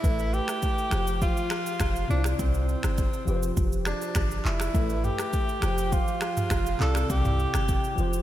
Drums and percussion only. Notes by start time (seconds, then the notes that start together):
0.04 kick, shaker
0.19 shaker
0.34 shaker
0.48 finger snap, cross-stick, shaker
0.62 kick, shaker
0.78 shaker
0.91 finger snap, cross-stick, shaker
1.07 shaker
1.22 kick, shaker
1.37 shaker
1.50 finger snap, cross-stick, shaker
1.66 shaker
1.80 finger snap, kick, cross-stick, shaker
1.96 shaker
2.10 shaker
2.24 finger snap, cross-stick, shaker
2.39 kick, shaker
2.54 shaker
2.69 shaker
2.83 finger snap, cross-stick, shaker
2.98 kick, shaker
3.14 shaker
3.28 shaker
3.43 shaker
3.57 kick, shaker
3.72 shaker
3.85 finger snap, cross-stick, shaker
4.02 shaker
4.15 finger snap, kick, cross-stick, shaker
4.31 shaker
4.45 clap, shaker
4.60 finger snap, cross-stick, shaker
4.75 kick, shaker
4.90 shaker
5.04 mid tom, shaker
5.18 finger snap, cross-stick, shaker
5.33 kick, shaker
5.49 shaker
5.62 finger snap, cross-stick, shaker
5.78 shaker
5.92 kick, shaker
6.08 shaker
6.21 finger snap, cross-stick, shaker
6.37 mid tom, shaker
6.50 finger snap, kick, cross-stick, shaker
6.66 shaker
6.80 clap, shaker
6.95 finger snap, cross-stick, shaker
7.10 kick, shaker
7.25 mid tom, shaker
7.39 shaker
7.54 finger snap, cross-stick, shaker
7.68 kick, shaker
7.84 shaker
7.98 shaker
8.13 shaker